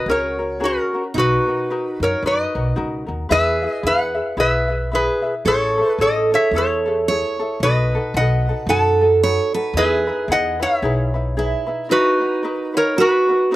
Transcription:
Already playing: F#4
0.06 C#2 C#4 F#4 G#4 A#4
0.11 C#5
0.39 C#4 F#4 A#4
0.60 C#4 F#4 G#4 A#4
0.65 A#4
0.94 C#4 F#4 A#4
1.14 B1 D#4 F#4 A#4 B4
1.19 B4
1.47 D#4 F#4 A#4
1.70 D#4 F#4 A#4 B4
2.00 F#2 F#4 A#4 C#5
2.04 D#4
2.22 F#2 D#4 F#4 A#4 B4
2.27 D#5
2.55 B1 D#4 F#4 A#4
2.76 C#2 D#4 F#4 A#4 B4
3.06 D#2 D#4 F#4 A#4
3.29 E2 E4 G#4 B4 E5
3.62 E4 G#4 E5
3.72 D#5
3.83 E2 E4 G#4 B4 E5 F#5
3.87 B4
4.15 E4 G#4 E5
4.37 B1 E4 G#4 B4 E5
4.68 E4 G#4 E5
4.92 E4 G#4 B4 E5
5.22 E4 G#4 E5
5.45 A1 E4 G#4 A4 C#5
5.78 E4 G#4 A4
5.91 B4
5.98 A1 E4 G#4 A4 C#5 D#5
6.32 E4 G#4 A4 C#5 E5
6.51 E2 E4 G#4 A4 C#5
6.56 A4 C#5
6.86 E4 G#4 A4
7.08 E4 G#4 A4 C#5
7.39 E4 G#4 A4
7.60 B1 B4 D#5
7.64 D#4 F#4 A4 B4
7.95 D#4 F#4 A4
8.14 B1 D#5 F#5
8.18 D#4 F#4 A4 B4
8.49 D#4 F#4 A4
8.67 F#2 D#4 A4 B4 F#5 A5
8.71 F#4 A4
9.01 D#4 F#4 A4
9.23 D#4 F#4 A4 B4 C#5
9.54 D#4 F#4 A4 B4
9.73 E2 G#4 E5
9.78 D#4 E4 G#4 B4
10.07 D#4 E4 B4
10.28 E2 D#4 E4 G#4 B4 F#5
10.33 D#5
10.60 D#4 E4 B4 C#5 E5
10.82 B1 D#4 E4 G#4 B4
11.14 D#4 E4 B4
11.37 D#4 E4 G#4 B4
11.67 D#4 E4 B4
11.89 D#4 F#4 A#4 B4
12.20 D#4 F#4 B4
12.43 D#4 F#4 A#4 B4
12.74 D#4 F#4 A#4 B4 C#5
12.96 D#4 F#4 A#4 B4
13.00 F#4 B4
13.28 D#4 F#4 B4
13.51 D#4 F#4 A#4 B4

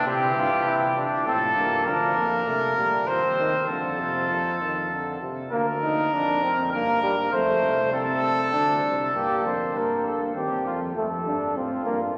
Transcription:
0.06 C3 E3 C4 G4
0.36 G2 F4
0.65 C3 E4
0.97 D4
1.26 A2 F3 C4 A4
1.56 G2 A#3
1.86 D2 F3 D4 A#4
2.16 F2 A#3
2.46 C3 A3
2.76 A#2 G3
3.07 D#2 F3 C4 C5
3.39 D#3
3.68 F2 D3 F4 A4
4.00 C3
4.29 F3
4.61 D#3
4.91 D3
5.21 C3
5.52 D2 A#3 A#4
5.83 D#4
6.13 F2 D4
6.43 C4
6.72 G2 A#3 A#4
7.03 G3
7.33 F2 A3 C5
7.63 C2
7.93 C4 A4
8.53 D2 D4
8.84 C2
9.14 G2 A#3 G4
9.45 F2 C5
9.75 G2 A#3 A#4
10.07 A4
10.35 D#2 C4 G4
10.65 F2 F4
10.95 F2 A3 A4
11.25 G2 D4
11.55 A2 C4 F4
11.85 G2 A#3

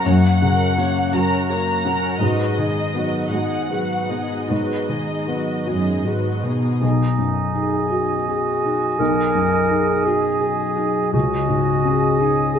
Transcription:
Already playing: C#4 F#4 A#4 C#5
0.06 F#2 A#3 F#4 C#5 F#5
0.42 C#3 C#4 A#4 F#5
0.78 A#3 C#4 F#4 A#4 C#5
1.14 F#2 C#4 F#4 A#4 C#5 F#5 A#5
1.48 A#3 F#4 A#4 C#5 A#5
1.85 C#4 F#4 A#4 F#5
2.20 G#2 F#3 F#4 B4 D#5
2.58 D#3 G#3 B3 D#4 G#4 D#5
2.94 F#3 B3 F#4 B4
3.31 G#2 G#3 D#4 F#4 G#4 D#5 F#5
3.71 F#3 F#4 G#4 B4
4.09 G#3 B3 D#4 F#4 G#4 D#5
4.49 G#2 F#3 F#4 B4 D#5
4.89 D#3 G#3 B3 D#4 G#4 D#5
5.28 F#3 B3 F#4 B4
5.66 F#2 G#3 D#4 F#4 G#4 D#5
6.04 G#2 F#3 F#4 G#4 B4
6.43 B2 G#3 B3 D#4 F#4 G#4 D#5
6.81 B1 B2 D#4 D#5 G#5
7.18 F#2 D#4
7.54 D#4 G#4
7.91 F#4 D#5
8.27 F#4 G#4
8.63 D#4 F#4
8.98 B1 B2 A#4
9.35 F#2 D#4
9.71 D#4 G#4
10.05 F#4 G#4 D#5
10.41 G#4
10.76 D#4 F#4
11.12 C#2 C#3 F#4 D#5 G#5
11.49 G#2 C#4
11.85 C#4 G#4
12.19 D#4 G#4 C#5
12.54 G#4

